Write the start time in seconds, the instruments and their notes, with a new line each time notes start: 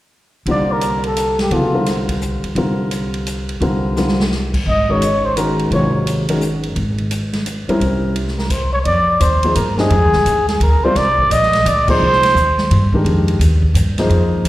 0.46 upright bass C2, grand piano D3 G3 A#3 C4 F4, ride
0.51 trumpet D5
0.72 trumpet A#4
0.81 hi-hat pedal, ride
1.04 trumpet A4, ride
1.17 hi-hat pedal, ride
1.39 trumpet G4, snare, ride
1.51 upright bass C2, grand piano C#3 F#3 B3 E4 A4, trumpet F4, ride
1.74 grand piano D3 G3 C4 F4 A#4
1.86 snare, hi-hat pedal, ride
2.08 kick, ride
2.21 hi-hat pedal
2.43 muted upright bass stroke, ride
2.55 upright bass C2, grand piano D3 G3 C4 F4 A#4, ride
2.91 hi-hat pedal, ride
3.14 ride
3.26 hi-hat pedal, ride
3.49 ride
3.60 upright bass C2, grand piano D3 G3 C4 F4 A#4, ride
3.96 grand piano D3 G3 C4 F4 A#4, snare, hi-hat pedal
4.08 snare
4.20 snare
4.31 snare
4.54 kick, crash
4.66 upright bass G#1, trumpet D#5
4.89 grand piano D#3 G#3 C#4 F#4 A#4, trumpet C#5
5.02 hi-hat pedal, ride
5.25 trumpet C5
5.37 grand piano D#3 G#3 C#4 F#4 A#4, trumpet A#4, hi-hat pedal, ride
5.59 ride
5.71 upright bass G#1, grand piano C3 F#3 F4 A#4 C#5, trumpet C#5, ride
6.07 hi-hat pedal, ride
6.29 grand piano D#3 G#3 C#4 F#4 A#4, ride
6.41 hi-hat pedal
6.63 ride
6.76 upright bass G#1, ride
6.98 ride
7.11 hi-hat pedal, ride
7.33 snare, ride
7.46 hi-hat pedal, ride
7.68 grand piano G3 C4 C#4 E4 A#4, muted upright bass stroke, ride
7.80 upright bass C2, ride
8.16 ride
8.28 snare
8.38 trumpet A#4, snare
8.50 trumpet C5, kick, hi-hat pedal, crash, ride
8.73 trumpet C#5
8.85 upright bass F2, trumpet D5, ride
9.20 upright bass D#2, trumpet C5, hi-hat pedal, ride
9.43 grand piano F3 A#3 D#4 G#4 C5, ride
9.55 upright bass G2, trumpet A#4, hi-hat pedal, ride
9.78 grand piano G#3 D4 G4 C5 D#5, trumpet G#4, snare
9.90 upright bass F2, ride
10.02 upright bass D#2
10.13 upright bass C2, snare
10.25 upright bass D#2, hi-hat pedal, ride
10.48 trumpet G#4, snare, ride
10.60 upright bass D2, trumpet A#4, ride
10.84 grand piano G3 C4 F4 A#4 D5, trumpet C5
10.95 upright bass C2, trumpet D5, snare, ride
11.18 kick
11.30 upright bass A#1, trumpet D#5, hi-hat pedal, ride
11.43 snare
11.53 snare, ride
11.65 upright bass D2, trumpet D5, hi-hat pedal, ride
11.88 grand piano F3 A#3 D#4 G#4 C5, trumpet C5, kick, crash
12.00 upright bass C2
12.13 snare
12.23 snare, ride
12.34 upright bass D#2, hi-hat pedal
12.58 snare
12.71 upright bass G2, ride
12.93 grand piano D#3 G#3 D4 G4 A#4, kick
13.04 upright bass F2, ride
13.28 ride
13.39 upright bass D#2, hi-hat pedal, ride
13.62 kick
13.74 upright bass G2, hi-hat pedal, ride
13.98 grand piano F3 A#3 D#4 G#4 C5, snare, ride
14.09 upright bass F2, ride
14.45 upright bass D#2, hi-hat pedal, ride